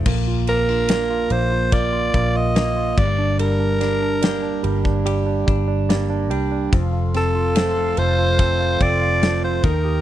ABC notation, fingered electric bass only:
X:1
M:4/4
L:1/8
Q:1/4=72
K:Bb
V:1 name="Fingered electric bass" clef=bass
B,,,3 B,,,2 B,,,2 G,,,- | G,,,3 G,,,2 G,,,2 C,, | F,,,3 F,,,2 F,,,2 E,, |]